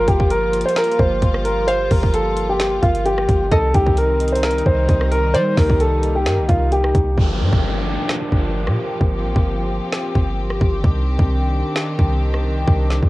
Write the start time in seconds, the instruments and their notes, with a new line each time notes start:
Already playing: string section F3 G3 A#3 F4, synth pluck G5
0.08 808-style bass G1, grand piano G4, kick, closed hi-hat
0.20 kick
0.30 grand piano A#4, closed hi-hat
0.54 closed hi-hat
0.61 closed hi-hat
0.66 grand piano C5, closed hi-hat
0.76 grand piano A#4, finger snap, snare, closed hi-hat
0.84 closed hi-hat
0.92 closed hi-hat
0.99 808-style bass G1, grand piano C5, kick
1.22 808-style bass G1, kick, closed hi-hat
1.34 cross-stick
1.45 grand piano A#4, closed hi-hat
1.68 grand piano C5, synth pluck F5, closed hi-hat
1.91 808-style bass G1, grand piano A#4, kick, open hi-hat
2.03 kick
2.14 grand piano A4, closed hi-hat
2.37 closed hi-hat
2.49 grand piano G4
2.60 finger snap, snare, closed hi-hat
2.82 808-style bass G1, grand piano F4, kick, closed hi-hat
2.95 closed hi-hat
3.05 grand piano G4, closed hi-hat
3.18 cross-stick
3.28 808-style bass G1, kick, closed hi-hat
3.51 808-style bass C2, string section D#3 G3 C4 D#4, grand piano A4, synth pluck D#5, kick, closed hi-hat
3.74 808-style bass C2, grand piano G4, kick, closed hi-hat
3.86 kick
3.97 grand piano A#4, closed hi-hat
4.20 closed hi-hat
4.28 closed hi-hat
4.32 grand piano C5, closed hi-hat
4.43 grand piano A#4, finger snap, snare, closed hi-hat
4.51 closed hi-hat
4.58 closed hi-hat
4.66 808-style bass C2, grand piano C5, kick
4.89 808-style bass C2, kick, closed hi-hat
5.01 cross-stick
5.11 grand piano A#4, closed hi-hat
5.34 808-style bass G3, string section A#3, grand piano C5, synth pluck D5, closed hi-hat
5.57 808-style bass C2, grand piano A#4, kick, snare, open hi-hat
5.70 kick
5.80 grand piano A4, closed hi-hat
6.03 closed hi-hat
6.15 grand piano G4
6.26 808-style bass G2, finger snap, snare, closed hi-hat
6.38 808-style bass C2
6.48 808-style bass C2, grand piano F4, kick, closed hi-hat
6.72 grand piano G4, closed hi-hat
6.84 cross-stick
6.95 808-style bass C2, kick, closed hi-hat
7.18 808-style bass G1, string section F3 A#3 D4 G4, kick, downlifter
7.41 808-style bass G2
7.53 808-style bass G1, kick
8.09 finger snap, snare
8.32 808-style bass G1, kick
8.67 808-style bass A#2, cross-stick
9.01 808-style bass G1, string section C4, kick
9.24 808-style bass A1
9.36 808-style bass G1, kick
9.93 finger snap, snare
10.15 808-style bass G1, kick
10.50 cross-stick
10.61 808-style bass G1, kick
10.84 808-style bass C2, string section D#3 D4, kick
11.19 808-style bass C2, kick
11.76 finger snap, snare
11.99 808-style bass C2, kick
12.34 cross-stick
12.67 808-style bass C2, kick
12.90 snare
13.02 808-style bass C2, kick